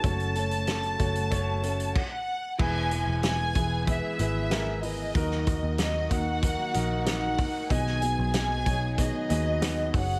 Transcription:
<<
  \new Staff \with { instrumentName = "Violin section" } { \time 4/4 \key b \major \tempo 4 = 94 a''2. fis''4 | gis''4 gis''4 e''4. dis''8~ | dis''4 dis''8 fis''4. fis''4 | gis''4 gis''4 dis''4. fis''8 | }
  \new Staff \with { instrumentName = "Grand piano" } { \time 4/4 \key b \major <a cis' fis' cis''>8 <a cis' fis' cis''>8 <a cis' fis' a'>8 <a cis' fis' cis''>8 <a cis' fis' cis''>8 <a cis' fis' cis''>8 r4 | <e' gis' b'>8 <e' b'>8 <e' gis' b'>8 <e' gis' b'>8 <e' gis' b'>8 <e' gis' b'>8 <e' gis' ais'>8 <e' gis' b'>8 | <dis' fis' ais'>8 <dis' fis' ais'>8 <dis' fis' ais'>8 <dis' fis' ais'>8 <dis' fis' ais'>8 <dis' fis' ais'>8 <dis' fis' ais'>8 <dis' fis' ais'>8 | <b dis' fis' gis' dis''>8 <b dis' fis' gis' dis''>8 <b dis' fis' dis''>8 <b dis' fis' gis' cis''>8 <b dis' fis' gis' dis''>8 <b dis' fis' gis' dis''>8 <b dis' fis' gis' b'>8 <fis' gis' cis''>8 | }
  \new Staff \with { instrumentName = "Grand piano" } { \clef bass \time 4/4 \key b \major r1 | e4. r2 r8 | dis4. r2 r8 | b,4. r2 r8 | }
  \new Staff \with { instrumentName = "Clean electric guitar" } { \time 4/4 \key b \major <fis cis' fis' a'>8 <cis' fis' a'>8 <fis cis' fis' a'>8 <cis' fis' a'>8 <fis cis' fis' a'>8 <cis' fis' a'>8 r4 | <e gis b e' gis'>8 <b e' gis'>8 <gis b e' gis'>8 <b e' gis'>8 <e gis b e' gis'>8 <b e' gis'>8 <gis b e' gis'>8 <b e' gis'>8 | <dis fis dis' fis' ais'>8 <dis' fis' ais'>8 <fis dis' fis' ais'>8 <dis' fis' ais'>8 <dis fis dis' fis' ais'>8 <dis' fis' ais'>8 <fis dis' fis' ais'>8 <dis' fis' ais'>8 | <b, dis fis b dis' gis'>8 <fis b dis' gis'>8 <fis b dis' gis'>8 <fis b dis' gis'>8 <b, dis fis b dis' gis'>8 <fis b dis' gis'>8 <fis b dis' gis'>8 <cis' fis' gis'>8 | }
  \new Staff \with { instrumentName = "String section" } { \time 4/4 \key b \major << { <a fis'>2. r4 | <b gis'>1 | <ais fis'>1 | <b gis'>2.~ <b gis'>8 <gis fis'>8 | } \\ { cis2. r4 | e1 | dis1~ | dis2.~ dis8 cis8 | } >> }
  \new Staff \with { instrumentName = "Picked electric bass" } { \clef bass \time 4/4 \key b \major fis,,4. fis,,8 fis,,4 r4 | e,,8. e,,8. e,,8. r16 gis,,4. | dis,8. dis,8. dis,8. r16 ais,,4 r8 | b,,8. b,,8. b,,8. r16 dis,4 fis,,8 | }
  \new DrumStaff \with { instrumentName = "Drums" } \drummode { \time 4/4 <hh bd>16 hh16 hh16 hh16 <hh sn>16 hh16 <hh bd>16 hh16 <hh bd>8 hh16 hh16 <cymc bd>4 | <cymc bd>8 hh8 <hh sn>8 <hh bd>8 <hh bd>8 hh8 <hh sn>8 hho8 | <hh bd>16 sn16 <hh bd>8 <hh sn>8 <hh bd>8 <hh bd>8 hh8 <hh sn>8 <hho bd>8 | <hh bd>16 sn16 hh8 <hh sn>8 <hh bd>8 <hh bd>8 hh8 <hh sn>8 <hho bd>8 | }
>>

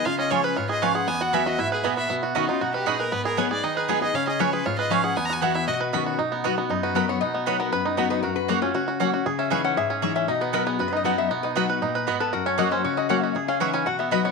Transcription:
<<
  \new Staff \with { instrumentName = "Fiddle" } { \time 4/4 \key b \major \tempo 4 = 235 eis''8 dis''8 cis''8 b'8 cis''8 dis''8 eis''8 fis''8 | gis''8 fis''8 e''8 dis''8 e''8 gis'8 b'8 e''8 | r4 dis'8 eis'8 fis'8 g'8 gis'8 ais'8 | b'8 ais'8 cis''8 d''8 dis''8 gis'8 b'8 dis''8 |
eis''8 dis''8 cis''8 b'8 cis''8 dis''8 eis''8 fis''8 | \tuplet 3/2 { gis''8 ais''8 gis''8 } fis''8 e''8 dis''8 r4. | r1 | r1 |
r1 | r1 | r1 | r1 |
r1 | r1 | }
  \new Staff \with { instrumentName = "Resonator guitar played with a steel bar" } { \time 4/4 \key b \major r1 | r1 | r1 | r1 |
r1 | r1 | r2 r8 b'8 ais'8 cis''8 | dis''4 cis''8 ais'8 b'8 dis'8 fis'8 b'8 |
ais'8 b'8 gis'8 eis'8 fis'8 r4. | r8 e''8 eis''8 fis''8 e''8 gis'8 cis''8 e''8 | dis''8 b'8 ais'8 gis'8 \tuplet 3/2 { fis'8 b'8 dis''8 } fis''8 e''8 | dis''8 b'8 r2 r8 a'8 |
ais'8 cis''8 dis''8 c''8 cis''8 dis''8 fis''8 dis''8 | e''8 eis''8 fis''8 gis''8 fis''8 e''8 dis''8 cis''8 | }
  \new Staff \with { instrumentName = "Mandolin" } { \time 4/4 \key b \major r4 <cis' eis' cis'' gis''>8 r4. <cis' eis' cis'' gis''>8 r8 | r4 <b fis' e'' gis''>8 r4. <b fis' e'' gis''>8 r8 | r4 <cis' fis' dis'' b''>8 r4. <cis' fis' dis'' b''>8 r8 | r4 <b gis' dis'' gis''>8 r4. <b gis' dis'' gis''>8 r8 |
r4 <cis' eis' cis'' gis''>8 r4. <cis' eis' cis'' gis''>8 r8 | r4 <b fis' e'' gis''>8 r4. <cis' fis' dis'' b''>8 r8 | r4 <b fis' dis'' b''>8 r4. <b fis' dis'' b''>8 r8 | r4 <b fis' dis'' b''>8 r4. <b fis' dis'' b''>8 r8 |
r4 <ais fis' cis'' fis''>8 r4. <ais fis' cis'' fis''>8 r8 | r4 <dis' gis' e'' cis'''>8 r4. <dis' gis' e'' cis'''>8 r8 | r4 <b fis' dis'' b''>8 r4. <b fis' dis'' b''>8 r8 | r4 <b fis' dis'' b''>8 r4. <b fis' dis'' b''>8 r8 |
r4 <ais fis' cis'' fis''>8 r4. <ais fis' cis'' fis''>8 r8 | r4 <dis' gis' e'' cis'''>8 r4. <b fis' dis'' b''>8 r8 | }
  \new Staff \with { instrumentName = "Five-string banjo" } { \time 4/4 \key b \major eis'8 cis'8 gis'8 b'8 eis'8 gis'8 b'8 gis'8 | b8 fis'8 b'8 fis'8 e'8 b'8 b8 fis'8 | b8 fis'8 b8 dis'8 fis'8 b'8 dis'8 b'8 | b8 gis'8 b'8 gis'8 dis'8 b'8 b8 gis'8 |
cis'8 gis'8 b'8 gis'8 eis'8 b'8 cis'8 gis'8 | b8 fis'8 b8 e'8 fis'8 b'8 b8 fis'8 | dis'8 b8 fis'8 b8 dis'8 fis'8 b'8 b8 | dis'8 b8 b'8 b8 b'8 dis'8 b8 dis'8 |
fis'4 fis'8 cis'8 fis'8 fis'8 cis'8 fis'8 | gis'8 cis'8 b'8 cis'8 gis'8 cis'4 cis'8 | dis'8 b8 b'8 b8 b'8 dis'8 b8 dis'8 | b8 dis'8 fis'8 b'8 dis'8 b'8 b8 b'8 |
fis'8 cis'8 fis'8 cis'8 fis'8 fis'8 cis'8 fis'8 | gis'8 cis'8 b'8 cis'8 fis'8 b8 b'8 b8 | }
  \new Staff \with { instrumentName = "Steel-string acoustic guitar" } { \time 4/4 \key b \major << { r4 <eis gis cis' eis'>4 r4 <eis gis cis' eis'>4 | r4 <e gis b fis'>8 <b fis'>8 r2 | r4 <b, dis cis' fis'>8 <cis' fis'>8 r2 | r4 <gis b dis' gis'>8 <dis' gis'>8 r4 <gis b dis' gis'>8 <dis' gis'>8 |
r4 <eis gis cis' eis'>4 r4 <eis gis cis' eis'>4 | r4 <e gis b fis'>4 r4 <b, dis cis' fis'>4 | r4 <fis b dis' fis'>8 <dis' fis'>8 r4 <fis b dis' fis'>4 | r4 <fis b dis' fis'>4 r4 <fis b dis' fis'>4 |
r4 <fis ais cis' fis'>8 <cis' fis'>8 r4 <fis ais cis' fis'>8 <cis' fis'>8 | r4 <e gis dis' e'>4 r4 <e gis dis' e'>4 | r4 <fis b dis' fis'>4 r4 <fis b dis' fis'>4 | r4 <fis b dis' fis'>4 r2 |
r4 <fis ais cis' fis'>4 r4 <fis ais cis' fis'>4 | r4 <e gis dis' e'>4 r4 <fis b dis' fis'>4 | } \\ { cis2 gis,2 | e,2 gis,4 ais,4 | b,2 b,4 ais,4 | gis,2 dis2 |
cis2 gis,2 | e,2 b,2 | b,2 fis,2 | b,2 fis,2 |
fis,2 cis2 | cis2 gis,2 | b,2 fis,2 | b,2 ais,4 gis,4 |
fis,2 cis2 | cis2 b,2 | } >> }
>>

